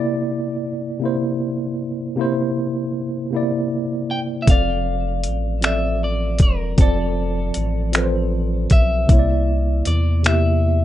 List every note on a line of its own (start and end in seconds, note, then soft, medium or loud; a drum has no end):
0.00 0.54 C3 medium
0.00 0.55 A#3 medium
0.00 0.56 E4 medium
0.00 0.57 D5 medium
0.99 1.70 C3 medium
0.99 1.71 A#3 medium
1.04 1.72 E4 medium
1.04 1.73 C5 medium
2.15 2.85 C3 medium
2.15 2.86 A#3 medium
2.15 2.87 E4 medium
2.21 2.88 C5 medium
3.31 4.01 C3 medium
3.31 4.02 A#3 medium
3.31 4.03 E4 medium
3.36 4.04 D5 medium
4.11 4.19 G5 loud
4.42 5.16 F3 medium
4.42 4.48 E5 medium
4.47 5.28 F1 loud
4.47 5.17 C4 medium
4.47 5.18 A4 medium
4.47 5.19 D5 medium
4.47 5.60 F5 loud
4.47 kick medium
4.47 closed hi-hat medium
5.24 6.42 A1 medium
5.24 closed hi-hat medium
5.61 6.31 F3 medium
5.61 6.32 C4 medium
5.61 6.33 A4 medium
5.61 finger snap loud
5.61 closed hi-hat medium
5.65 6.34 D5 medium
5.65 6.04 E5 medium
6.04 6.39 D5 medium
6.39 6.75 E1 medium
6.39 6.80 A#4 medium
6.39 kick medium
6.39 closed hi-hat medium
6.77 7.52 F1 loud
6.77 7.47 F3 medium
6.77 7.48 C4 medium
6.77 7.49 A4 medium
6.77 kick medium
6.77 closed hi-hat medium
6.81 7.91 A4 medium
6.81 7.50 D5 medium
7.54 8.68 A1 medium
7.54 closed hi-hat medium
7.92 8.62 F3 medium
7.92 8.63 C4 medium
7.92 8.64 A4 medium
7.92 finger snap loud
7.92 closed hi-hat medium
7.98 8.02 B4 medium
8.04 8.68 C5 medium
8.70 9.06 B1 medium
8.70 9.87 E5 loud
8.70 kick medium
8.70 closed hi-hat medium
9.07 9.83 C2 loud
9.07 9.77 C3 medium
9.07 9.78 A#3 medium
9.07 9.79 E4 medium
9.07 kick medium
9.07 closed hi-hat medium
9.13 9.17 C#5 medium
9.19 9.83 D5 medium
9.85 10.85 E2 loud
9.85 10.22 D5 medium
9.85 closed hi-hat medium
10.23 10.85 C3 medium
10.23 10.85 A#3 medium
10.23 10.85 E5 medium
10.23 finger snap loud
10.23 closed hi-hat medium
10.27 10.85 E4 medium
10.27 10.85 G4 medium